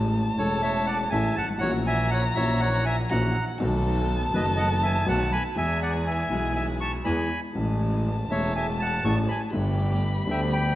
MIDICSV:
0, 0, Header, 1, 6, 480
1, 0, Start_track
1, 0, Key_signature, 3, "major"
1, 0, Tempo, 494234
1, 1574, Time_signature, 4, 2, 24, 8
1, 10441, End_track
2, 0, Start_track
2, 0, Title_t, "Violin"
2, 0, Program_c, 0, 40
2, 0, Note_on_c, 0, 81, 116
2, 1529, Note_off_c, 0, 81, 0
2, 1550, Note_on_c, 0, 82, 123
2, 3008, Note_on_c, 0, 78, 100
2, 3022, Note_off_c, 0, 82, 0
2, 3479, Note_on_c, 0, 81, 127
2, 3494, Note_off_c, 0, 78, 0
2, 5387, Note_on_c, 0, 80, 98
2, 5402, Note_off_c, 0, 81, 0
2, 7086, Note_off_c, 0, 80, 0
2, 7319, Note_on_c, 0, 81, 97
2, 9213, Note_off_c, 0, 81, 0
2, 9256, Note_on_c, 0, 83, 110
2, 10441, Note_off_c, 0, 83, 0
2, 10441, End_track
3, 0, Start_track
3, 0, Title_t, "Bandoneon"
3, 0, Program_c, 1, 23
3, 369, Note_on_c, 1, 73, 80
3, 380, Note_on_c, 1, 69, 65
3, 597, Note_off_c, 1, 73, 0
3, 600, Note_off_c, 1, 69, 0
3, 604, Note_on_c, 1, 76, 86
3, 611, Note_on_c, 1, 73, 72
3, 832, Note_off_c, 1, 76, 0
3, 835, Note_on_c, 1, 78, 91
3, 836, Note_off_c, 1, 73, 0
3, 851, Note_on_c, 1, 74, 66
3, 948, Note_off_c, 1, 78, 0
3, 960, Note_off_c, 1, 74, 0
3, 1068, Note_on_c, 1, 80, 93
3, 1087, Note_on_c, 1, 76, 76
3, 1314, Note_off_c, 1, 76, 0
3, 1317, Note_on_c, 1, 81, 97
3, 1329, Note_off_c, 1, 80, 0
3, 1338, Note_on_c, 1, 78, 81
3, 1429, Note_off_c, 1, 81, 0
3, 1446, Note_off_c, 1, 78, 0
3, 1543, Note_on_c, 1, 78, 100
3, 1560, Note_on_c, 1, 73, 76
3, 1658, Note_off_c, 1, 78, 0
3, 1671, Note_off_c, 1, 73, 0
3, 1810, Note_on_c, 1, 80, 107
3, 1822, Note_on_c, 1, 76, 74
3, 2035, Note_off_c, 1, 80, 0
3, 2042, Note_off_c, 1, 76, 0
3, 2045, Note_on_c, 1, 78, 96
3, 2072, Note_on_c, 1, 73, 78
3, 2155, Note_off_c, 1, 78, 0
3, 2176, Note_off_c, 1, 73, 0
3, 2282, Note_on_c, 1, 76, 99
3, 2298, Note_on_c, 1, 73, 78
3, 2519, Note_off_c, 1, 73, 0
3, 2524, Note_on_c, 1, 78, 105
3, 2535, Note_off_c, 1, 76, 0
3, 2541, Note_on_c, 1, 73, 76
3, 2760, Note_off_c, 1, 73, 0
3, 2766, Note_on_c, 1, 80, 102
3, 2775, Note_off_c, 1, 78, 0
3, 2778, Note_on_c, 1, 76, 83
3, 2875, Note_off_c, 1, 80, 0
3, 2884, Note_off_c, 1, 76, 0
3, 3011, Note_on_c, 1, 82, 96
3, 3022, Note_on_c, 1, 78, 85
3, 3343, Note_off_c, 1, 82, 0
3, 3349, Note_off_c, 1, 78, 0
3, 4213, Note_on_c, 1, 71, 66
3, 4231, Note_on_c, 1, 75, 84
3, 4317, Note_off_c, 1, 71, 0
3, 4331, Note_off_c, 1, 75, 0
3, 4433, Note_on_c, 1, 75, 70
3, 4453, Note_on_c, 1, 78, 96
3, 4541, Note_off_c, 1, 75, 0
3, 4556, Note_off_c, 1, 78, 0
3, 4688, Note_on_c, 1, 76, 71
3, 4709, Note_on_c, 1, 80, 95
3, 4904, Note_off_c, 1, 76, 0
3, 4916, Note_off_c, 1, 80, 0
3, 4939, Note_on_c, 1, 78, 72
3, 4950, Note_on_c, 1, 81, 96
3, 5150, Note_off_c, 1, 78, 0
3, 5156, Note_off_c, 1, 81, 0
3, 5168, Note_on_c, 1, 83, 110
3, 5174, Note_on_c, 1, 80, 81
3, 5273, Note_off_c, 1, 83, 0
3, 5277, Note_off_c, 1, 80, 0
3, 5416, Note_on_c, 1, 76, 73
3, 5419, Note_on_c, 1, 80, 102
3, 5630, Note_off_c, 1, 76, 0
3, 5632, Note_off_c, 1, 80, 0
3, 5658, Note_on_c, 1, 78, 89
3, 5660, Note_on_c, 1, 74, 69
3, 5761, Note_off_c, 1, 78, 0
3, 5763, Note_off_c, 1, 74, 0
3, 5896, Note_on_c, 1, 76, 70
3, 5899, Note_on_c, 1, 80, 86
3, 6336, Note_off_c, 1, 76, 0
3, 6352, Note_off_c, 1, 80, 0
3, 6366, Note_on_c, 1, 80, 88
3, 6369, Note_on_c, 1, 76, 67
3, 6474, Note_off_c, 1, 80, 0
3, 6476, Note_off_c, 1, 76, 0
3, 6609, Note_on_c, 1, 85, 96
3, 6617, Note_on_c, 1, 81, 75
3, 6717, Note_off_c, 1, 85, 0
3, 6723, Note_off_c, 1, 81, 0
3, 6842, Note_on_c, 1, 83, 95
3, 6854, Note_on_c, 1, 80, 66
3, 7184, Note_off_c, 1, 83, 0
3, 7191, Note_off_c, 1, 80, 0
3, 8070, Note_on_c, 1, 76, 86
3, 8074, Note_on_c, 1, 73, 65
3, 8289, Note_off_c, 1, 76, 0
3, 8291, Note_off_c, 1, 73, 0
3, 8308, Note_on_c, 1, 80, 90
3, 8318, Note_on_c, 1, 76, 70
3, 8415, Note_off_c, 1, 80, 0
3, 8422, Note_off_c, 1, 76, 0
3, 8539, Note_on_c, 1, 81, 95
3, 8565, Note_on_c, 1, 78, 68
3, 8777, Note_off_c, 1, 78, 0
3, 8786, Note_on_c, 1, 85, 95
3, 8787, Note_off_c, 1, 81, 0
3, 8822, Note_on_c, 1, 81, 77
3, 8892, Note_off_c, 1, 85, 0
3, 8920, Note_off_c, 1, 81, 0
3, 9016, Note_on_c, 1, 83, 88
3, 9040, Note_on_c, 1, 80, 76
3, 9125, Note_off_c, 1, 83, 0
3, 9143, Note_off_c, 1, 80, 0
3, 10010, Note_on_c, 1, 76, 65
3, 10012, Note_on_c, 1, 79, 84
3, 10109, Note_off_c, 1, 76, 0
3, 10111, Note_off_c, 1, 79, 0
3, 10225, Note_on_c, 1, 79, 80
3, 10229, Note_on_c, 1, 83, 102
3, 10441, Note_off_c, 1, 79, 0
3, 10441, Note_off_c, 1, 83, 0
3, 10441, End_track
4, 0, Start_track
4, 0, Title_t, "String section"
4, 0, Program_c, 2, 48
4, 0, Note_on_c, 2, 56, 89
4, 0, Note_on_c, 2, 57, 88
4, 0, Note_on_c, 2, 61, 76
4, 331, Note_off_c, 2, 61, 0
4, 332, Note_off_c, 2, 56, 0
4, 334, Note_off_c, 2, 57, 0
4, 361, Note_on_c, 2, 57, 91
4, 364, Note_on_c, 2, 56, 89
4, 364, Note_on_c, 2, 61, 85
4, 1053, Note_off_c, 2, 57, 0
4, 1055, Note_off_c, 2, 56, 0
4, 1055, Note_off_c, 2, 61, 0
4, 1073, Note_on_c, 2, 57, 73
4, 1074, Note_on_c, 2, 61, 71
4, 1076, Note_on_c, 2, 68, 90
4, 1286, Note_off_c, 2, 57, 0
4, 1286, Note_off_c, 2, 61, 0
4, 1287, Note_off_c, 2, 68, 0
4, 1556, Note_on_c, 2, 58, 99
4, 1559, Note_on_c, 2, 64, 86
4, 1562, Note_on_c, 2, 66, 95
4, 2249, Note_off_c, 2, 58, 0
4, 2251, Note_off_c, 2, 64, 0
4, 2252, Note_off_c, 2, 66, 0
4, 2270, Note_on_c, 2, 58, 98
4, 2275, Note_on_c, 2, 64, 81
4, 2276, Note_on_c, 2, 66, 97
4, 2963, Note_off_c, 2, 58, 0
4, 2966, Note_off_c, 2, 64, 0
4, 2967, Note_off_c, 2, 66, 0
4, 3005, Note_on_c, 2, 64, 72
4, 3007, Note_on_c, 2, 58, 79
4, 3007, Note_on_c, 2, 66, 88
4, 3208, Note_off_c, 2, 64, 0
4, 3209, Note_off_c, 2, 58, 0
4, 3209, Note_off_c, 2, 66, 0
4, 3490, Note_on_c, 2, 59, 96
4, 3495, Note_on_c, 2, 63, 90
4, 3497, Note_on_c, 2, 69, 106
4, 4165, Note_off_c, 2, 59, 0
4, 4167, Note_off_c, 2, 63, 0
4, 4168, Note_off_c, 2, 69, 0
4, 4200, Note_on_c, 2, 63, 84
4, 4201, Note_on_c, 2, 59, 85
4, 4201, Note_on_c, 2, 69, 102
4, 4879, Note_off_c, 2, 59, 0
4, 4879, Note_off_c, 2, 63, 0
4, 4879, Note_off_c, 2, 69, 0
4, 4918, Note_on_c, 2, 59, 81
4, 4921, Note_on_c, 2, 63, 71
4, 4924, Note_on_c, 2, 69, 79
4, 5118, Note_off_c, 2, 59, 0
4, 5119, Note_off_c, 2, 63, 0
4, 5120, Note_off_c, 2, 69, 0
4, 5389, Note_on_c, 2, 64, 82
4, 5390, Note_on_c, 2, 59, 83
4, 5396, Note_on_c, 2, 68, 106
4, 6078, Note_off_c, 2, 64, 0
4, 6079, Note_off_c, 2, 59, 0
4, 6082, Note_off_c, 2, 68, 0
4, 6122, Note_on_c, 2, 59, 76
4, 6124, Note_on_c, 2, 64, 78
4, 6126, Note_on_c, 2, 68, 91
4, 6811, Note_off_c, 2, 59, 0
4, 6812, Note_off_c, 2, 64, 0
4, 6814, Note_off_c, 2, 68, 0
4, 6841, Note_on_c, 2, 59, 71
4, 6842, Note_on_c, 2, 64, 67
4, 6845, Note_on_c, 2, 68, 82
4, 7049, Note_off_c, 2, 59, 0
4, 7049, Note_off_c, 2, 64, 0
4, 7051, Note_off_c, 2, 68, 0
4, 7327, Note_on_c, 2, 61, 75
4, 7330, Note_on_c, 2, 57, 86
4, 7334, Note_on_c, 2, 56, 96
4, 8019, Note_off_c, 2, 61, 0
4, 8021, Note_off_c, 2, 57, 0
4, 8023, Note_off_c, 2, 56, 0
4, 8054, Note_on_c, 2, 57, 83
4, 8055, Note_on_c, 2, 61, 84
4, 8056, Note_on_c, 2, 56, 96
4, 8742, Note_off_c, 2, 57, 0
4, 8743, Note_off_c, 2, 56, 0
4, 8743, Note_off_c, 2, 61, 0
4, 8772, Note_on_c, 2, 57, 79
4, 8772, Note_on_c, 2, 61, 69
4, 8776, Note_on_c, 2, 68, 76
4, 8977, Note_off_c, 2, 57, 0
4, 8977, Note_off_c, 2, 61, 0
4, 8979, Note_off_c, 2, 68, 0
4, 9255, Note_on_c, 2, 59, 81
4, 9256, Note_on_c, 2, 57, 96
4, 9261, Note_on_c, 2, 67, 101
4, 9937, Note_off_c, 2, 59, 0
4, 9938, Note_off_c, 2, 57, 0
4, 9940, Note_off_c, 2, 67, 0
4, 9972, Note_on_c, 2, 57, 84
4, 9972, Note_on_c, 2, 59, 84
4, 9972, Note_on_c, 2, 67, 92
4, 10441, Note_off_c, 2, 57, 0
4, 10441, Note_off_c, 2, 59, 0
4, 10441, Note_off_c, 2, 67, 0
4, 10441, End_track
5, 0, Start_track
5, 0, Title_t, "Upright piano"
5, 0, Program_c, 3, 0
5, 0, Note_on_c, 3, 33, 89
5, 0, Note_on_c, 3, 45, 83
5, 0, Note_on_c, 3, 52, 73
5, 0, Note_on_c, 3, 56, 78
5, 0, Note_on_c, 3, 57, 71
5, 0, Note_on_c, 3, 61, 63
5, 327, Note_off_c, 3, 52, 0
5, 332, Note_off_c, 3, 57, 0
5, 334, Note_off_c, 3, 33, 0
5, 338, Note_off_c, 3, 45, 0
5, 339, Note_off_c, 3, 61, 0
5, 345, Note_off_c, 3, 56, 0
5, 356, Note_on_c, 3, 52, 75
5, 367, Note_on_c, 3, 57, 66
5, 372, Note_on_c, 3, 40, 80
5, 376, Note_on_c, 3, 28, 81
5, 379, Note_on_c, 3, 61, 59
5, 392, Note_on_c, 3, 56, 73
5, 1050, Note_off_c, 3, 52, 0
5, 1056, Note_off_c, 3, 57, 0
5, 1059, Note_off_c, 3, 40, 0
5, 1061, Note_off_c, 3, 28, 0
5, 1062, Note_off_c, 3, 61, 0
5, 1069, Note_off_c, 3, 56, 0
5, 1086, Note_on_c, 3, 52, 71
5, 1090, Note_on_c, 3, 57, 78
5, 1091, Note_on_c, 3, 33, 92
5, 1091, Note_on_c, 3, 45, 90
5, 1095, Note_on_c, 3, 61, 68
5, 1095, Note_on_c, 3, 68, 84
5, 1292, Note_off_c, 3, 52, 0
5, 1294, Note_off_c, 3, 33, 0
5, 1294, Note_off_c, 3, 45, 0
5, 1294, Note_off_c, 3, 57, 0
5, 1296, Note_off_c, 3, 61, 0
5, 1296, Note_off_c, 3, 68, 0
5, 1392, Note_on_c, 3, 31, 58
5, 1453, Note_off_c, 3, 31, 0
5, 1458, Note_on_c, 3, 32, 62
5, 1516, Note_off_c, 3, 32, 0
5, 1523, Note_on_c, 3, 33, 74
5, 1557, Note_on_c, 3, 52, 75
5, 1570, Note_on_c, 3, 58, 74
5, 1575, Note_on_c, 3, 46, 85
5, 1576, Note_on_c, 3, 34, 91
5, 1579, Note_off_c, 3, 33, 0
5, 1581, Note_on_c, 3, 61, 70
5, 1596, Note_on_c, 3, 66, 81
5, 2250, Note_off_c, 3, 52, 0
5, 2256, Note_off_c, 3, 58, 0
5, 2258, Note_off_c, 3, 46, 0
5, 2259, Note_off_c, 3, 34, 0
5, 2262, Note_off_c, 3, 61, 0
5, 2269, Note_off_c, 3, 66, 0
5, 2284, Note_on_c, 3, 52, 76
5, 2295, Note_on_c, 3, 58, 69
5, 2298, Note_on_c, 3, 34, 83
5, 2304, Note_on_c, 3, 46, 93
5, 2309, Note_on_c, 3, 61, 70
5, 2322, Note_on_c, 3, 66, 82
5, 2970, Note_off_c, 3, 52, 0
5, 2976, Note_off_c, 3, 58, 0
5, 2978, Note_off_c, 3, 34, 0
5, 2981, Note_off_c, 3, 46, 0
5, 2983, Note_off_c, 3, 61, 0
5, 2990, Note_off_c, 3, 66, 0
5, 3013, Note_on_c, 3, 52, 83
5, 3016, Note_on_c, 3, 61, 79
5, 3017, Note_on_c, 3, 58, 72
5, 3017, Note_on_c, 3, 66, 98
5, 3018, Note_on_c, 3, 34, 89
5, 3018, Note_on_c, 3, 46, 94
5, 3212, Note_off_c, 3, 52, 0
5, 3214, Note_off_c, 3, 34, 0
5, 3214, Note_off_c, 3, 58, 0
5, 3214, Note_off_c, 3, 61, 0
5, 3214, Note_off_c, 3, 66, 0
5, 3215, Note_off_c, 3, 46, 0
5, 3475, Note_on_c, 3, 51, 74
5, 3490, Note_on_c, 3, 57, 72
5, 3494, Note_on_c, 3, 35, 95
5, 3497, Note_on_c, 3, 47, 101
5, 3502, Note_on_c, 3, 59, 72
5, 3517, Note_on_c, 3, 66, 82
5, 4158, Note_off_c, 3, 51, 0
5, 4165, Note_off_c, 3, 57, 0
5, 4167, Note_off_c, 3, 35, 0
5, 4168, Note_off_c, 3, 47, 0
5, 4171, Note_off_c, 3, 59, 0
5, 4179, Note_off_c, 3, 66, 0
5, 4190, Note_on_c, 3, 51, 76
5, 4204, Note_on_c, 3, 57, 75
5, 4207, Note_on_c, 3, 30, 81
5, 4209, Note_on_c, 3, 42, 88
5, 4212, Note_on_c, 3, 59, 67
5, 4229, Note_on_c, 3, 66, 85
5, 4874, Note_off_c, 3, 51, 0
5, 4881, Note_off_c, 3, 57, 0
5, 4882, Note_off_c, 3, 30, 0
5, 4883, Note_off_c, 3, 42, 0
5, 4885, Note_off_c, 3, 59, 0
5, 4893, Note_off_c, 3, 66, 0
5, 4913, Note_on_c, 3, 51, 85
5, 4916, Note_on_c, 3, 57, 72
5, 4917, Note_on_c, 3, 47, 94
5, 4917, Note_on_c, 3, 59, 73
5, 4918, Note_on_c, 3, 66, 83
5, 4919, Note_on_c, 3, 35, 101
5, 5115, Note_off_c, 3, 51, 0
5, 5117, Note_off_c, 3, 47, 0
5, 5117, Note_off_c, 3, 57, 0
5, 5117, Note_off_c, 3, 59, 0
5, 5118, Note_off_c, 3, 35, 0
5, 5118, Note_off_c, 3, 66, 0
5, 5389, Note_on_c, 3, 52, 92
5, 5402, Note_on_c, 3, 56, 68
5, 5406, Note_on_c, 3, 40, 94
5, 5412, Note_on_c, 3, 59, 71
5, 5424, Note_on_c, 3, 68, 79
5, 6085, Note_off_c, 3, 56, 0
5, 6086, Note_off_c, 3, 52, 0
5, 6087, Note_off_c, 3, 40, 0
5, 6090, Note_off_c, 3, 59, 0
5, 6096, Note_off_c, 3, 68, 0
5, 6111, Note_on_c, 3, 52, 70
5, 6120, Note_on_c, 3, 56, 62
5, 6129, Note_on_c, 3, 35, 91
5, 6129, Note_on_c, 3, 47, 87
5, 6136, Note_on_c, 3, 59, 59
5, 6150, Note_on_c, 3, 68, 83
5, 6806, Note_off_c, 3, 52, 0
5, 6811, Note_off_c, 3, 56, 0
5, 6815, Note_off_c, 3, 35, 0
5, 6815, Note_off_c, 3, 47, 0
5, 6818, Note_off_c, 3, 59, 0
5, 6825, Note_off_c, 3, 68, 0
5, 6843, Note_on_c, 3, 52, 89
5, 6845, Note_on_c, 3, 40, 82
5, 6845, Note_on_c, 3, 56, 65
5, 6847, Note_on_c, 3, 59, 65
5, 6848, Note_on_c, 3, 68, 78
5, 7051, Note_off_c, 3, 40, 0
5, 7051, Note_off_c, 3, 52, 0
5, 7051, Note_off_c, 3, 56, 0
5, 7052, Note_off_c, 3, 59, 0
5, 7052, Note_off_c, 3, 68, 0
5, 7313, Note_on_c, 3, 52, 75
5, 7324, Note_on_c, 3, 57, 69
5, 7331, Note_on_c, 3, 33, 81
5, 7332, Note_on_c, 3, 45, 83
5, 7339, Note_on_c, 3, 61, 74
5, 7354, Note_on_c, 3, 56, 87
5, 8013, Note_off_c, 3, 52, 0
5, 8018, Note_off_c, 3, 57, 0
5, 8022, Note_off_c, 3, 33, 0
5, 8022, Note_off_c, 3, 45, 0
5, 8025, Note_off_c, 3, 61, 0
5, 8033, Note_off_c, 3, 56, 0
5, 8042, Note_on_c, 3, 52, 72
5, 8053, Note_on_c, 3, 57, 66
5, 8059, Note_on_c, 3, 28, 81
5, 8064, Note_on_c, 3, 40, 85
5, 8069, Note_on_c, 3, 61, 62
5, 8079, Note_on_c, 3, 56, 79
5, 8736, Note_off_c, 3, 52, 0
5, 8742, Note_off_c, 3, 57, 0
5, 8745, Note_off_c, 3, 28, 0
5, 8747, Note_off_c, 3, 40, 0
5, 8749, Note_off_c, 3, 61, 0
5, 8755, Note_off_c, 3, 56, 0
5, 8779, Note_on_c, 3, 52, 85
5, 8779, Note_on_c, 3, 57, 74
5, 8782, Note_on_c, 3, 68, 78
5, 8783, Note_on_c, 3, 33, 93
5, 8784, Note_on_c, 3, 61, 72
5, 8786, Note_on_c, 3, 45, 99
5, 8980, Note_off_c, 3, 57, 0
5, 8981, Note_off_c, 3, 52, 0
5, 8982, Note_off_c, 3, 68, 0
5, 8983, Note_off_c, 3, 33, 0
5, 8983, Note_off_c, 3, 61, 0
5, 8984, Note_off_c, 3, 45, 0
5, 9233, Note_on_c, 3, 55, 76
5, 9247, Note_on_c, 3, 59, 64
5, 9252, Note_on_c, 3, 31, 87
5, 9252, Note_on_c, 3, 43, 94
5, 9264, Note_on_c, 3, 62, 69
5, 9272, Note_on_c, 3, 69, 82
5, 9926, Note_off_c, 3, 55, 0
5, 9933, Note_off_c, 3, 59, 0
5, 9935, Note_off_c, 3, 43, 0
5, 9936, Note_off_c, 3, 31, 0
5, 9942, Note_off_c, 3, 62, 0
5, 9945, Note_off_c, 3, 69, 0
5, 9963, Note_on_c, 3, 55, 75
5, 9970, Note_on_c, 3, 59, 65
5, 9976, Note_on_c, 3, 50, 87
5, 9978, Note_on_c, 3, 38, 87
5, 9987, Note_on_c, 3, 62, 67
5, 9999, Note_on_c, 3, 69, 78
5, 10441, Note_off_c, 3, 38, 0
5, 10441, Note_off_c, 3, 50, 0
5, 10441, Note_off_c, 3, 55, 0
5, 10441, Note_off_c, 3, 59, 0
5, 10441, Note_off_c, 3, 62, 0
5, 10441, Note_off_c, 3, 69, 0
5, 10441, End_track
6, 0, Start_track
6, 0, Title_t, "Double bass"
6, 0, Program_c, 4, 43
6, 0, Note_on_c, 4, 33, 98
6, 335, Note_off_c, 4, 33, 0
6, 362, Note_on_c, 4, 28, 89
6, 1054, Note_off_c, 4, 28, 0
6, 1084, Note_on_c, 4, 33, 92
6, 1291, Note_off_c, 4, 33, 0
6, 1344, Note_on_c, 4, 32, 65
6, 1567, Note_off_c, 4, 32, 0
6, 1572, Note_on_c, 4, 34, 101
6, 2257, Note_off_c, 4, 34, 0
6, 2293, Note_on_c, 4, 34, 104
6, 2975, Note_off_c, 4, 34, 0
6, 3015, Note_on_c, 4, 34, 108
6, 3213, Note_off_c, 4, 34, 0
6, 3494, Note_on_c, 4, 35, 107
6, 4167, Note_off_c, 4, 35, 0
6, 4201, Note_on_c, 4, 30, 106
6, 4880, Note_off_c, 4, 30, 0
6, 4915, Note_on_c, 4, 35, 110
6, 5116, Note_off_c, 4, 35, 0
6, 5399, Note_on_c, 4, 40, 97
6, 6083, Note_off_c, 4, 40, 0
6, 6120, Note_on_c, 4, 35, 88
6, 6810, Note_off_c, 4, 35, 0
6, 6844, Note_on_c, 4, 40, 94
6, 7050, Note_off_c, 4, 40, 0
6, 7332, Note_on_c, 4, 33, 97
6, 8022, Note_off_c, 4, 33, 0
6, 8058, Note_on_c, 4, 28, 95
6, 8744, Note_off_c, 4, 28, 0
6, 8779, Note_on_c, 4, 33, 106
6, 8980, Note_off_c, 4, 33, 0
6, 9251, Note_on_c, 4, 31, 97
6, 9935, Note_off_c, 4, 31, 0
6, 9976, Note_on_c, 4, 38, 98
6, 10441, Note_off_c, 4, 38, 0
6, 10441, End_track
0, 0, End_of_file